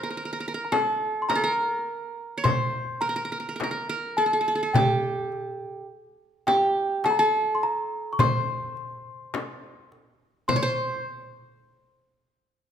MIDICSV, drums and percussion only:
0, 0, Header, 1, 3, 480
1, 0, Start_track
1, 0, Tempo, 1149425
1, 1981, Time_signature, 10, 3, 24, 8
1, 5308, End_track
2, 0, Start_track
2, 0, Title_t, "Darbuka"
2, 302, Note_on_c, 9, 63, 63
2, 343, Note_off_c, 9, 63, 0
2, 542, Note_on_c, 9, 63, 61
2, 584, Note_off_c, 9, 63, 0
2, 1023, Note_on_c, 9, 64, 80
2, 1064, Note_off_c, 9, 64, 0
2, 1503, Note_on_c, 9, 63, 61
2, 1545, Note_off_c, 9, 63, 0
2, 1981, Note_on_c, 9, 64, 87
2, 2023, Note_off_c, 9, 64, 0
2, 2222, Note_on_c, 9, 62, 27
2, 2264, Note_off_c, 9, 62, 0
2, 2702, Note_on_c, 9, 63, 59
2, 2743, Note_off_c, 9, 63, 0
2, 2940, Note_on_c, 9, 63, 60
2, 2982, Note_off_c, 9, 63, 0
2, 3181, Note_on_c, 9, 62, 25
2, 3223, Note_off_c, 9, 62, 0
2, 3420, Note_on_c, 9, 64, 86
2, 3462, Note_off_c, 9, 64, 0
2, 3662, Note_on_c, 9, 62, 30
2, 3704, Note_off_c, 9, 62, 0
2, 3903, Note_on_c, 9, 63, 69
2, 3945, Note_off_c, 9, 63, 0
2, 4142, Note_on_c, 9, 62, 26
2, 4184, Note_off_c, 9, 62, 0
2, 4381, Note_on_c, 9, 64, 77
2, 4423, Note_off_c, 9, 64, 0
2, 5308, End_track
3, 0, Start_track
3, 0, Title_t, "Frame drum"
3, 303, Note_on_c, 9, 64, 69
3, 345, Note_off_c, 9, 64, 0
3, 545, Note_on_c, 9, 64, 67
3, 586, Note_off_c, 9, 64, 0
3, 1024, Note_on_c, 9, 64, 75
3, 1066, Note_off_c, 9, 64, 0
3, 1506, Note_on_c, 9, 64, 68
3, 1548, Note_off_c, 9, 64, 0
3, 1985, Note_on_c, 9, 64, 89
3, 2027, Note_off_c, 9, 64, 0
3, 2705, Note_on_c, 9, 64, 65
3, 2747, Note_off_c, 9, 64, 0
3, 2942, Note_on_c, 9, 64, 57
3, 2984, Note_off_c, 9, 64, 0
3, 3421, Note_on_c, 9, 64, 81
3, 3462, Note_off_c, 9, 64, 0
3, 3900, Note_on_c, 9, 64, 67
3, 3942, Note_off_c, 9, 64, 0
3, 4380, Note_on_c, 9, 64, 74
3, 4422, Note_off_c, 9, 64, 0
3, 5308, End_track
0, 0, End_of_file